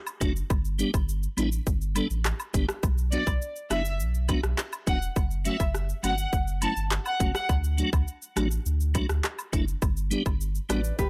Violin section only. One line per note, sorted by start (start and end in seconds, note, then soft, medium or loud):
3.12 3.22 D5 medium
3.71 3.90 E5 medium
4.87 4.97 F#5 medium
5.46 5.55 E5 medium
6.04 6.23 F#5 medium
6.62 6.72 A5 medium
7.06 7.15 F#5 medium
7.35 7.44 F#5 medium